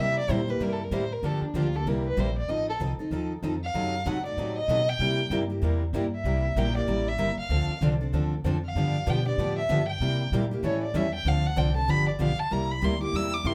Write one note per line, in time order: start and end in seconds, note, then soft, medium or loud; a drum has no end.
0.00 0.18 C3 medium
0.00 0.28 C3 medium
0.00 0.18 G3 medium
0.00 0.18 A#3 medium
0.00 0.18 E4 medium
0.00 0.18 G4 medium
0.00 0.18 E5 loud
0.19 0.32 D5 medium
0.29 0.59 A#2 medium
0.29 0.40 C3 medium
0.29 0.40 G3 medium
0.29 0.41 A#3 medium
0.29 0.41 E4 loud
0.29 0.41 G4 medium
0.29 0.51 C5 medium
0.48 0.60 A#3 soft
0.48 0.60 E4 medium
0.48 0.60 G4 medium
0.48 0.64 B4 medium
0.60 0.91 G2 medium
0.60 0.81 C3 medium
0.60 0.81 G3 medium
0.60 0.81 A#3 medium
0.60 0.81 E4 medium
0.60 0.81 G4 medium
0.60 0.74 A#4 medium
0.73 0.85 A4 medium
0.84 0.95 A#4 medium
0.91 1.22 A2 medium
0.91 1.03 C3 medium
0.91 1.03 G3 medium
0.91 1.03 A#3 medium
0.91 1.03 E4 medium
0.91 1.03 G4 medium
0.91 1.14 C5 medium
1.12 1.27 A#4 medium
1.23 1.41 G2 medium
1.23 1.43 D3 medium
1.23 1.43 F3 medium
1.23 1.43 A#3 medium
1.23 1.44 D4 medium
1.23 1.44 G4 medium
1.23 1.43 A4 medium
1.41 1.58 D4 soft
1.41 muted upright bass stroke soft
1.54 1.85 D2 medium
1.54 1.66 D3 medium
1.54 1.66 F3 medium
1.54 1.66 A#3 medium
1.54 1.66 D4 medium
1.54 1.77 F4 medium
1.54 1.66 G4 medium
1.73 1.86 A#3 soft
1.73 1.86 D4 medium
1.73 1.86 G4 soft
1.73 1.90 A4 medium
1.85 2.16 C2 medium
1.85 2.06 C3 medium
1.85 2.07 G3 medium
1.85 2.07 A#3 medium
1.85 2.07 E4 medium
1.85 2.07 G4 medium
1.85 2.06 A#4 medium
2.07 2.21 B4 medium
2.17 2.48 A#1 medium
2.17 2.28 C3 medium
2.17 2.28 G3 medium
2.17 2.28 A#3 medium
2.17 2.28 E4 medium
2.17 2.29 G4 medium
2.17 2.37 C5 medium
2.38 2.52 D5 medium
2.49 2.79 A1 medium
2.49 2.69 F3 medium
2.49 2.69 C4 medium
2.49 2.69 D#4 medium
2.49 2.69 A4 medium
2.49 2.68 D#5 medium
2.69 2.77 A4 medium
2.80 2.98 C2 medium
2.80 2.91 F3 medium
2.80 2.91 C4 medium
2.80 2.92 D#4 medium
2.80 2.92 A4 medium
2.98 3.10 C4 soft
2.98 3.11 D#4 medium
2.98 3.11 A4 medium
2.98 muted upright bass stroke soft
3.11 3.42 D#2 medium
3.11 3.31 F3 medium
3.11 3.32 C4 medium
3.11 3.32 D#4 medium
3.11 3.32 A4 medium
3.43 3.73 F2 medium
3.43 3.54 F3 medium
3.43 3.54 C4 medium
3.43 3.54 D#4 medium
3.43 3.55 A4 medium
3.64 4.09 F5 medium
3.74 4.05 F#2 medium
3.74 3.95 C3 medium
3.74 3.95 F#3 medium
3.74 3.95 A3 medium
3.74 3.94 C4 medium
3.74 3.95 D#4 medium
3.74 3.95 F#4 medium
3.74 3.95 A4 medium
4.06 4.36 G#2 medium
4.06 4.17 C3 medium
4.06 4.17 F#3 medium
4.06 4.17 A3 medium
4.06 4.17 C4 medium
4.06 4.17 D#4 medium
4.06 4.17 F#4 medium
4.06 4.17 A4 medium
4.06 4.25 F#5 medium
4.25 4.38 A3 soft
4.25 4.38 D#4 soft
4.25 4.37 F#4 medium
4.25 4.54 D5 medium
4.37 4.67 A2 medium
4.37 4.57 C3 medium
4.37 4.58 F#3 medium
4.37 4.58 A3 medium
4.37 4.57 C4 medium
4.37 4.58 D#4 medium
4.37 4.58 F#4 medium
4.37 4.58 A4 medium
4.58 4.91 D#5 loud
4.68 4.99 B2 medium
4.68 4.80 C3 medium
4.68 4.80 F#3 medium
4.68 4.80 A3 medium
4.68 4.80 C4 medium
4.68 4.80 D#4 medium
4.68 4.80 F#4 loud
4.68 4.80 A4 medium
4.89 5.32 G5 loud
4.99 5.30 C3 medium
4.99 5.20 C3 medium
4.99 5.20 G3 medium
4.99 5.20 A#3 medium
4.99 5.20 E4 medium
4.99 5.20 G4 medium
5.30 5.61 G2 medium
5.30 5.42 C3 medium
5.30 5.42 G3 medium
5.30 5.42 A#3 medium
5.30 5.42 E4 medium
5.30 5.42 G4 medium
5.50 5.61 A#3 soft
5.50 5.61 E4 soft
5.50 5.61 G4 medium
5.62 5.92 E2 medium
5.62 5.82 C3 medium
5.62 5.82 G3 medium
5.62 5.82 A#3 medium
5.62 5.82 E4 medium
5.62 5.82 G4 medium
5.93 6.23 G2 medium
5.93 6.05 C3 medium
5.93 6.05 G3 medium
5.93 6.05 A#3 loud
5.93 6.05 E4 medium
5.93 6.06 G4 loud
6.15 6.60 E5 medium
6.24 6.55 C2 medium
6.24 6.45 C3 medium
6.24 6.45 G3 medium
6.24 6.45 A#3 medium
6.24 6.45 E4 medium
6.24 6.46 G4 medium
6.56 6.87 A#1 medium
6.56 6.67 C3 medium
6.56 6.68 G3 medium
6.56 6.68 A#3 medium
6.56 6.68 E4 medium
6.56 6.68 G4 medium
6.56 6.76 G5 loud
6.75 6.87 A#3 soft
6.75 6.87 E4 medium
6.75 6.87 G4 medium
6.75 7.10 D5 medium
6.87 7.17 A1 medium
6.87 7.07 C3 medium
6.87 7.08 G3 medium
6.87 7.08 A#3 medium
6.87 7.08 E4 medium
6.87 7.08 G4 medium
7.08 7.39 E5 loud
7.18 7.36 G1 medium
7.18 7.30 C3 medium
7.18 7.30 G3 medium
7.18 7.30 A#3 medium
7.18 7.30 E4 medium
7.18 7.30 G4 medium
7.37 7.80 F5 medium
7.37 muted upright bass stroke soft
7.49 7.67 D2 medium
7.49 7.70 D3 medium
7.49 7.70 F3 medium
7.49 7.70 C4 medium
7.49 7.70 D4 medium
7.49 7.71 A4 medium
7.68 muted upright bass stroke soft
7.81 8.12 C2 medium
7.81 7.92 D3 medium
7.81 7.93 F3 medium
7.81 7.93 C4 medium
7.81 7.93 D4 medium
7.81 7.93 A4 medium
8.01 8.12 C4 soft
8.01 8.13 D4 soft
8.01 8.13 A4 medium
8.13 8.43 D2 medium
8.13 8.33 D3 medium
8.13 8.33 F3 medium
8.13 8.33 C4 medium
8.13 8.34 D4 medium
8.13 8.34 A4 medium
8.44 8.75 F2 loud
8.44 8.56 D3 medium
8.44 8.56 F3 medium
8.44 8.56 C4 medium
8.44 8.56 D4 medium
8.44 8.57 A4 loud
8.66 9.11 F5 medium
8.75 9.06 G2 medium
8.75 8.96 D3 medium
8.75 8.96 F3 medium
8.75 8.96 B3 medium
8.75 8.97 D4 medium
8.75 8.97 G4 medium
9.07 9.37 B2 medium
9.07 9.18 D3 medium
9.07 9.18 F3 medium
9.07 9.18 B3 medium
9.07 9.18 D4 medium
9.07 9.19 G4 medium
9.07 9.27 G5 medium
9.25 9.38 B3 soft
9.25 9.38 D4 medium
9.25 9.38 G4 medium
9.25 9.56 D5 medium
9.38 9.69 A2 medium
9.38 9.58 D3 medium
9.38 9.59 F3 medium
9.38 9.59 B3 medium
9.38 9.59 D4 medium
9.38 9.59 G4 medium
9.58 9.87 E5 medium
9.69 10.00 G2 medium
9.69 9.80 D3 medium
9.69 9.80 F3 medium
9.69 9.80 B3 loud
9.69 9.81 D4 medium
9.69 9.81 G4 loud
9.88 10.29 G5 medium
10.00 10.31 C3 medium
10.00 10.21 C3 medium
10.00 10.21 G3 medium
10.00 10.21 A#3 medium
10.00 10.22 E4 medium
10.00 10.22 G4 medium
10.32 10.62 A#2 medium
10.32 10.43 C3 medium
10.32 10.44 G3 medium
10.32 10.43 A#3 medium
10.32 10.44 E4 medium
10.32 10.44 G4 medium
10.51 10.63 A#3 soft
10.51 10.63 E4 medium
10.51 10.63 G4 medium
10.63 10.94 A2 medium
10.63 10.83 E3 medium
10.63 10.83 G3 medium
10.63 10.83 C#4 medium
10.63 10.84 E4 medium
10.63 10.84 A4 medium
10.63 10.81 C#5 medium
10.83 10.98 D5 medium
10.94 11.24 E2 medium
10.94 11.06 E3 medium
10.94 11.06 G3 medium
10.94 11.06 C#4 loud
10.94 11.06 E4 loud
10.94 11.06 A4 medium
10.94 11.14 E5 medium
11.14 11.29 G5 medium
11.25 11.56 D2 medium
11.25 11.46 D3 medium
11.25 11.46 F3 medium
11.25 11.46 C4 medium
11.25 11.46 D4 medium
11.25 11.46 A4 medium
11.25 11.48 F5 medium
11.46 11.60 F#5 loud
11.57 11.87 C2 medium
11.57 11.68 D3 medium
11.57 11.68 F3 medium
11.57 11.68 C4 medium
11.57 11.68 D4 loud
11.57 11.68 A4 medium
11.57 11.75 G5 medium
11.75 11.88 C4 soft
11.75 11.88 D4 medium
11.75 11.88 A4 medium
11.75 11.91 A5 medium
11.88 12.19 G1 medium
11.88 12.08 D3 medium
11.88 12.08 F3 medium
11.88 12.08 B3 medium
11.88 12.09 D4 medium
11.88 12.09 G4 medium
11.88 12.08 B5 loud
12.09 12.23 D5 medium
12.19 12.37 B1 loud
12.19 12.30 D3 medium
12.19 12.30 F3 medium
12.19 12.31 B3 loud
12.19 12.31 D4 medium
12.19 12.31 G4 medium
12.19 12.41 F5 loud
12.39 12.54 A5 medium
12.39 muted upright bass stroke soft
12.50 12.82 C2 medium
12.50 12.71 C3 medium
12.50 12.71 G3 medium
12.50 12.71 A#3 medium
12.50 12.71 E4 medium
12.50 12.71 G4 medium
12.50 12.73 A#5 medium
12.71 12.86 B5 medium
12.81 13.12 D2 medium
12.81 12.93 C3 medium
12.81 12.93 G3 medium
12.81 12.93 A#3 medium
12.81 12.93 E4 medium
12.81 12.93 G4 medium
12.81 13.02 C6 medium
13.00 13.13 A#3 soft
13.00 13.14 E4 soft
13.00 13.13 G4 medium
13.00 13.17 D6 medium
13.13 13.44 E2 medium
13.13 13.33 C3 medium
13.13 13.34 G3 medium
13.13 13.34 A#3 medium
13.13 13.34 E4 medium
13.13 13.34 G4 medium
13.13 13.35 E6 loud
13.34 13.49 D6 medium
13.44 13.54 G2 medium
13.44 13.54 C3 medium
13.44 13.54 G3 medium
13.44 13.54 A#3 medium
13.44 13.54 E4 medium
13.44 13.54 G4 medium
13.44 13.54 C6 medium